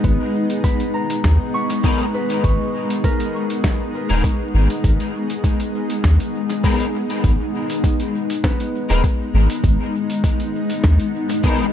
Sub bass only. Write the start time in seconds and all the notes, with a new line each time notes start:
0.04 G#1
1.24 D#2
2.44 G#1
4.10 D#1
4.54 G#1
4.84 G#1
6.04 D#2
7.24 G#1
8.90 D#1
9.34 G#1
9.64 G#1
10.84 D#2